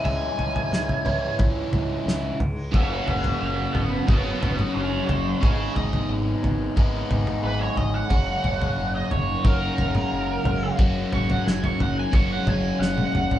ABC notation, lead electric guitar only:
X:1
M:4/4
L:1/16
Q:1/4=90
K:F#mix
V:1 name="Lead electric guitar"
g8 z8 | [df]2 [df]2 [df]2 [Fd]2 [Fd]2 [Fd]2 [Ac]2 [Ac]2 | [Gc]2 d2 z8 B c d f- | f4- f d c2 A8 |
z2 c' f g c' f g c' f g2 f4 |]